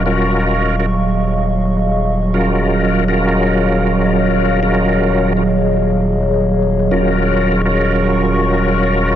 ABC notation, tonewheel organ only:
X:1
M:4/4
L:1/16
Q:"Swing 16ths" 1/4=105
K:Ebm
V:1 name="Tonewheel organ"
[DFGB]4- [DFGB] [DFGB] z8 z2 | [DFGB]4- [DFGB] [DFGB]8- [DFGB]3 | [DFGB]4- [DFGB] [DFGB] z8 z2 | [DFGB]4- [DFGB] [DFGB]8- [DFGB]3 |]